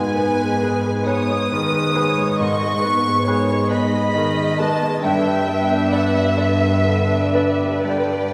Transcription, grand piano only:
0, 0, Header, 1, 2, 480
1, 0, Start_track
1, 0, Tempo, 895522
1, 1289, Time_signature, 6, 3, 24, 8
1, 1289, Tempo, 878477
1, 3209, Tempo, 934579
1, 3689, Tempo, 993377
1, 4404, End_track
2, 0, Start_track
2, 0, Title_t, "Grand piano"
2, 0, Program_c, 0, 0
2, 0, Control_c, 0, 64, 127
2, 0, Note_on_c, 0, 44, 60
2, 88, Note_on_c, 0, 59, 49
2, 330, Note_on_c, 0, 68, 46
2, 334, Note_on_c, 0, 71, 48
2, 478, Note_off_c, 0, 59, 0
2, 553, Note_off_c, 0, 68, 0
2, 555, Note_off_c, 0, 71, 0
2, 570, Note_on_c, 0, 68, 48
2, 572, Note_on_c, 0, 71, 51
2, 790, Note_off_c, 0, 68, 0
2, 791, Note_off_c, 0, 71, 0
2, 811, Note_on_c, 0, 51, 52
2, 1048, Note_on_c, 0, 68, 51
2, 1048, Note_on_c, 0, 71, 53
2, 1192, Note_off_c, 0, 51, 0
2, 1266, Note_off_c, 0, 68, 0
2, 1266, Note_off_c, 0, 71, 0
2, 1268, Note_off_c, 0, 44, 0
2, 1287, Note_on_c, 0, 44, 57
2, 1299, Control_c, 0, 64, 0
2, 1389, Control_c, 0, 64, 127
2, 1524, Note_on_c, 0, 59, 53
2, 1764, Note_on_c, 0, 68, 50
2, 1766, Note_on_c, 0, 71, 51
2, 1905, Note_off_c, 0, 59, 0
2, 1980, Note_off_c, 0, 68, 0
2, 1981, Note_off_c, 0, 71, 0
2, 1998, Note_on_c, 0, 68, 44
2, 1999, Note_on_c, 0, 71, 46
2, 2217, Note_off_c, 0, 68, 0
2, 2218, Note_off_c, 0, 71, 0
2, 2240, Note_on_c, 0, 51, 52
2, 2486, Note_on_c, 0, 56, 51
2, 2488, Note_on_c, 0, 71, 50
2, 2626, Note_off_c, 0, 51, 0
2, 2701, Note_off_c, 0, 44, 0
2, 2704, Note_off_c, 0, 56, 0
2, 2704, Note_off_c, 0, 71, 0
2, 2726, Note_on_c, 0, 43, 67
2, 2732, Control_c, 0, 64, 0
2, 2810, Control_c, 0, 64, 127
2, 2964, Note_on_c, 0, 59, 51
2, 3211, Note_on_c, 0, 71, 44
2, 3213, Note_on_c, 0, 74, 46
2, 3347, Note_off_c, 0, 59, 0
2, 3423, Note_off_c, 0, 71, 0
2, 3424, Note_off_c, 0, 74, 0
2, 3441, Note_on_c, 0, 71, 43
2, 3444, Note_on_c, 0, 74, 42
2, 3667, Note_off_c, 0, 71, 0
2, 3668, Note_off_c, 0, 74, 0
2, 3686, Note_on_c, 0, 50, 45
2, 3926, Note_on_c, 0, 71, 42
2, 3927, Note_on_c, 0, 74, 45
2, 4075, Note_off_c, 0, 50, 0
2, 4151, Note_off_c, 0, 71, 0
2, 4152, Note_off_c, 0, 74, 0
2, 4154, Note_off_c, 0, 43, 0
2, 4168, Note_on_c, 0, 43, 52
2, 4183, Control_c, 0, 64, 0
2, 4254, Control_c, 0, 64, 127
2, 4404, Note_off_c, 0, 43, 0
2, 4404, End_track
0, 0, End_of_file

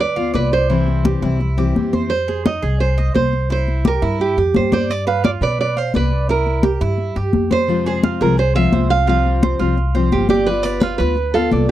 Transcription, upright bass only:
0, 0, Header, 1, 2, 480
1, 0, Start_track
1, 0, Key_signature, -4, "minor"
1, 0, Tempo, 349243
1, 958, Time_signature, 4, 2, 24, 8
1, 16094, End_track
2, 0, Start_track
2, 0, Title_t, "Upright bass"
2, 0, Program_c, 0, 32
2, 0, Note_on_c, 0, 38, 92
2, 424, Note_off_c, 0, 38, 0
2, 468, Note_on_c, 0, 36, 79
2, 1598, Note_off_c, 0, 36, 0
2, 1680, Note_on_c, 0, 36, 93
2, 2352, Note_off_c, 0, 36, 0
2, 2409, Note_on_c, 0, 41, 75
2, 3530, Note_off_c, 0, 41, 0
2, 3615, Note_on_c, 0, 36, 92
2, 4282, Note_off_c, 0, 36, 0
2, 4323, Note_on_c, 0, 36, 84
2, 5447, Note_off_c, 0, 36, 0
2, 5525, Note_on_c, 0, 43, 92
2, 5973, Note_off_c, 0, 43, 0
2, 6006, Note_on_c, 0, 41, 71
2, 6230, Note_off_c, 0, 41, 0
2, 6251, Note_on_c, 0, 43, 79
2, 7370, Note_off_c, 0, 43, 0
2, 7433, Note_on_c, 0, 47, 100
2, 8109, Note_off_c, 0, 47, 0
2, 8165, Note_on_c, 0, 36, 84
2, 9286, Note_off_c, 0, 36, 0
2, 9358, Note_on_c, 0, 43, 94
2, 9807, Note_off_c, 0, 43, 0
2, 9841, Note_on_c, 0, 43, 70
2, 10066, Note_off_c, 0, 43, 0
2, 10084, Note_on_c, 0, 41, 80
2, 11204, Note_off_c, 0, 41, 0
2, 11284, Note_on_c, 0, 36, 91
2, 11952, Note_off_c, 0, 36, 0
2, 11990, Note_on_c, 0, 36, 81
2, 13115, Note_off_c, 0, 36, 0
2, 13203, Note_on_c, 0, 36, 89
2, 13871, Note_off_c, 0, 36, 0
2, 13913, Note_on_c, 0, 31, 82
2, 15036, Note_off_c, 0, 31, 0
2, 15110, Note_on_c, 0, 38, 94
2, 15782, Note_off_c, 0, 38, 0
2, 15829, Note_on_c, 0, 36, 89
2, 16094, Note_off_c, 0, 36, 0
2, 16094, End_track
0, 0, End_of_file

